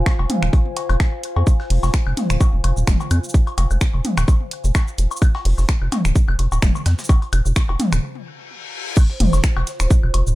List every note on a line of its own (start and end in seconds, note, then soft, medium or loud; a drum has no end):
0.00 8.03 F4 medium
0.00 8.03 C5 medium
0.00 8.03 F5 medium
0.00 8.03 G#5 medium
0.06 finger snap medium
0.06 kick loud
0.06 snare loud
0.06 closed hi-hat medium
0.06 low woodblock medium
0.19 0.26 F1 medium
0.19 cowbell medium
0.30 closed hi-hat medium
0.30 mid tom medium
0.43 0.50 D#1 medium
0.43 finger snap medium
0.43 closed hi-hat soft
0.43 high woodblock soft
0.53 kick loud
0.53 closed hi-hat medium
0.53 low woodblock soft
0.77 closed hi-hat medium
0.77 cowbell medium
0.89 0.97 F1 loud
0.89 closed hi-hat soft
0.89 high woodblock medium
0.89 low woodblock medium
1.00 finger snap medium
1.00 kick loud
1.00 snare loud
1.00 closed hi-hat medium
1.23 closed hi-hat medium
1.36 1.44 F2 medium
1.36 cowbell medium
1.36 low woodblock soft
1.47 kick loud
1.47 closed hi-hat medium
1.47 cabasa soft
1.47 low woodblock soft
1.60 snare soft
1.60 high woodblock soft
1.70 1.79 F1 loud
1.70 closed hi-hat medium
1.70 open hi-hat medium
1.83 1.90 F1 medium
1.83 snare soft
1.83 cowbell medium
1.83 cabasa soft
1.83 low woodblock medium
1.94 finger snap medium
1.94 kick loud
1.94 snare loud
1.94 closed hi-hat medium
1.94 cabasa soft
2.07 2.14 F1 medium
2.07 high woodblock medium
2.17 snare soft
2.17 closed hi-hat medium
2.17 mid tom medium
2.17 cabasa soft
2.30 2.37 D#1 medium
2.30 finger snap medium
2.30 cabasa soft
2.30 low woodblock soft
2.41 kick loud
2.41 closed hi-hat medium
2.41 cowbell medium
2.41 cabasa soft
2.53 2.61 F1 medium
2.64 2.73 F1 loud
2.64 closed hi-hat medium
2.64 high woodblock soft
2.64 low woodblock medium
2.77 2.84 D#1 medium
2.77 cabasa soft
2.87 2.96 F1 medium
2.87 finger snap medium
2.87 kick loud
2.87 snare loud
2.87 closed hi-hat medium
2.87 mid tom medium
2.87 cabasa soft
3.00 cowbell medium
3.00 cabasa soft
3.11 3.20 F2 medium
3.11 closed hi-hat medium
3.11 cabasa soft
3.11 high woodblock medium
3.11 low woodblock soft
3.24 cabasa soft
3.29 cabasa soft
3.34 kick loud
3.34 closed hi-hat medium
3.34 cabasa soft
3.47 closed hi-hat soft
3.47 low woodblock medium
3.58 3.67 F1 loud
3.58 closed hi-hat medium
3.58 cowbell medium
3.58 cabasa soft
3.71 3.78 F1 loud
3.71 cabasa soft
3.71 high woodblock soft
3.81 finger snap medium
3.81 kick medium
3.81 snare loud
3.81 closed hi-hat medium
3.81 cabasa soft
3.94 4.01 F1 medium
3.94 low woodblock soft
4.05 closed hi-hat medium
4.05 mid tom medium
4.05 cabasa soft
4.17 4.25 D#1 medium
4.17 finger snap medium
4.17 closed hi-hat soft
4.17 cowbell medium
4.17 cabasa soft
4.17 high woodblock medium
4.28 kick loud
4.28 closed hi-hat medium
4.28 cabasa soft
4.28 low woodblock medium
4.51 closed hi-hat medium
4.64 4.72 F1 medium
4.64 closed hi-hat soft
4.64 cabasa soft
4.75 finger snap medium
4.75 kick loud
4.75 snare loud
4.75 closed hi-hat medium
4.75 cowbell medium
4.75 cabasa soft
4.75 high woodblock soft
4.75 low woodblock soft
4.88 cabasa soft
4.98 5.07 F1 medium
4.98 closed hi-hat medium
4.98 cabasa soft
5.11 cabasa soft
5.11 low woodblock medium
5.17 cabasa medium
5.22 kick loud
5.22 closed hi-hat medium
5.22 cabasa medium
5.22 high woodblock medium
5.35 snare medium
5.35 cowbell medium
5.45 5.54 F1 loud
5.45 closed hi-hat medium
5.45 open hi-hat medium
5.58 5.65 F1 medium
5.58 snare medium
5.58 cabasa soft
5.58 low woodblock soft
5.69 finger snap medium
5.69 kick loud
5.69 snare loud
5.69 closed hi-hat medium
5.69 cabasa medium
5.82 5.89 F1 medium
5.82 high woodblock soft
5.92 snare soft
5.92 closed hi-hat medium
5.92 mid tom medium
5.92 cowbell medium
5.92 cabasa soft
5.92 low woodblock medium
6.05 6.12 D#1 medium
6.05 finger snap medium
6.05 cabasa soft
6.16 kick loud
6.16 closed hi-hat medium
6.16 cabasa medium
6.28 6.36 F1 medium
6.28 high woodblock medium
6.39 6.48 F1 loud
6.39 closed hi-hat medium
6.39 low woodblock soft
6.52 6.59 D#1 medium
6.52 cowbell medium
6.52 cabasa soft
6.62 6.71 F1 medium
6.62 finger snap medium
6.62 kick loud
6.62 snare loud
6.62 closed hi-hat medium
6.62 mid tom medium
6.62 cabasa medium
6.75 cabasa soft
6.75 low woodblock medium
6.86 6.95 F2 loud
6.86 snare loud
6.86 closed hi-hat medium
6.86 cabasa soft
6.86 high woodblock soft
6.99 snare loud
6.99 closed hi-hat medium
6.99 cabasa soft
7.04 cabasa medium
7.09 kick loud
7.09 closed hi-hat medium
7.09 cowbell medium
7.22 closed hi-hat soft
7.22 low woodblock soft
7.33 7.42 F1 loud
7.33 closed hi-hat medium
7.33 cabasa soft
7.33 high woodblock medium
7.46 7.53 F1 loud
7.46 cabasa soft
7.56 finger snap medium
7.56 kick loud
7.56 snare loud
7.56 closed hi-hat medium
7.56 cabasa medium
7.56 low woodblock medium
7.69 7.76 F1 medium
7.69 cowbell medium
7.80 snare soft
7.80 closed hi-hat medium
7.80 mid tom loud
7.80 cabasa soft
7.92 8.00 D#1 medium
7.92 finger snap medium
7.92 closed hi-hat soft
7.92 cabasa soft
7.92 high woodblock soft
8.03 reverse cymbal medium
8.97 10.35 F4 medium
8.97 10.35 C5 medium
8.97 kick loud
8.97 closed hi-hat medium
8.97 crash loud
8.97 cabasa medium
8.97 high woodblock soft
8.97 low woodblock soft
9.10 snare medium
9.20 9.29 F1 loud
9.20 closed hi-hat medium
9.20 mid tom medium
9.20 open hi-hat medium
9.33 9.40 F1 loud
9.33 snare medium
9.33 cabasa soft
9.33 low woodblock medium
9.44 finger snap loud
9.44 kick loud
9.44 snare loud
9.44 closed hi-hat medium
9.44 cabasa medium
9.57 9.64 F1 medium
9.57 cowbell medium
9.57 high woodblock medium
9.67 snare medium
9.67 closed hi-hat medium
9.67 cabasa soft
9.80 9.87 D#1 medium
9.80 finger snap medium
9.80 cabasa soft
9.80 low woodblock soft
9.91 kick loud
9.91 closed hi-hat medium
9.91 cabasa medium
10.03 10.11 F1 medium
10.03 high woodblock soft
10.14 10.23 F1 loud
10.14 closed hi-hat medium
10.14 low woodblock medium
10.27 10.34 D#1 medium
10.27 cabasa soft